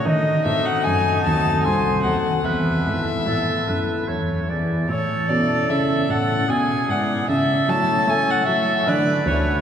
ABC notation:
X:1
M:3/4
L:1/16
Q:1/4=75
K:A
V:1 name="Violin"
^d2 e f g2 a2 g2 f2 | e8- e2 z2 | c2 d2 e2 f2 g2 f2 | e2 a2 g f e2 d2 c2 |]
V:2 name="Oboe"
^D8 ^B2 z2 | B4 A2 B2 c2 d2 | A8 G4 | A8 B4 |]
V:3 name="Pipe organ"
z2 [^B,FA]4 [B,FA]4 [B,FA]2 | z2 [B,EA]4 [B,EA]2 z2 [B,EG]2 | z2 [CEA]4 [CEA]2 z2 [B,Ed]2 | z2 [A,Ec]4 [A,Ec]2 z2 [A,FA]2 |]
V:4 name="Pipe organ" clef=bass
^D,2 A,,2 F,,2 ^D,,2 ^B,,,2 D,,2 | E,,2 G,,2 A,,2 F,,2 E,,2 E,2 | A,,2 B,,2 C,2 A,,2 B,,2 G,,2 | C,2 F,2 A,2 F,2 D,2 D,,2 |]
V:5 name="Cello" clef=bass
^D,2 A,,2 F,,2 ^D,,2 ^B,,,2 D,,2 | E,,2 G,,2 A,,2 F,,2 E,,2 E,2 | A,,2 B,,2 C,2 A,,2 B,,2 G,,2 | C,2 F,2 A,2 F,2 D,2 D,,2 |]